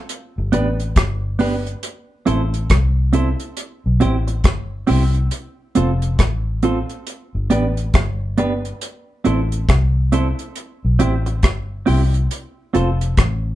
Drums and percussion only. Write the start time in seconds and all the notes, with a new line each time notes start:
0.09 closed hi-hat
0.53 closed hi-hat
0.80 closed hi-hat
0.96 kick, cross-stick, closed hi-hat
1.39 open hi-hat
1.67 closed hi-hat
1.83 closed hi-hat
2.27 closed hi-hat
2.54 closed hi-hat
2.70 kick, cross-stick, closed hi-hat
3.13 closed hi-hat
3.40 closed hi-hat
3.57 closed hi-hat
4.01 closed hi-hat
4.28 closed hi-hat
4.44 kick, cross-stick, closed hi-hat
4.87 open hi-hat
5.14 closed hi-hat
5.31 closed hi-hat
5.75 closed hi-hat
6.02 closed hi-hat
6.19 kick, cross-stick, closed hi-hat
6.63 closed hi-hat
6.89 closed hi-hat
7.07 closed hi-hat
7.50 closed hi-hat
7.77 closed hi-hat
7.94 kick, cross-stick, closed hi-hat
8.38 closed hi-hat
8.65 closed hi-hat
8.81 closed hi-hat
9.25 closed hi-hat
9.52 closed hi-hat
9.69 kick, cross-stick, closed hi-hat
10.12 closed hi-hat
10.39 closed hi-hat
10.56 closed hi-hat
11.00 closed hi-hat
11.26 closed hi-hat
11.43 kick, cross-stick, closed hi-hat
11.87 open hi-hat
12.14 closed hi-hat
12.31 closed hi-hat
12.75 closed hi-hat
13.01 closed hi-hat
13.17 kick, cross-stick, closed hi-hat